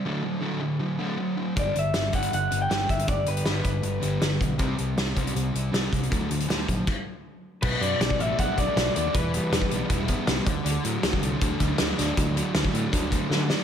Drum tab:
CC |----------------|----------------|----------------|----------------|
HH |----------------|x-x-x-xxx-x-x-xx|x-xxx-x-x-x-x-x-|x-x-x-xxx-x-x-xx|
SD |----------------|----o-------o---|----o-------o---|----o-------o---|
BD |----------------|o-----o-------o-|o-----o-------o-|o-----o-------o-|

CC |--------x-------|x---------------|----------------|----------------|
HH |x-xxx-x---------|--x-x-x-x-x-x-x-|x-x-x-x-x-x-x-x-|x-x-x-x-x-x-x-x-|
SD |----o-----------|----o-------o---|----o-------o---|----o-------o-o-|
BD |o-----o-o-------|o----o--o-o-----|o----o--o-o---o-|-----o--o-o-----|

CC |----------------|
HH |x-x-x-x-x-x-----|
SD |----o-------o-o-|
BD |o----o--o-o-----|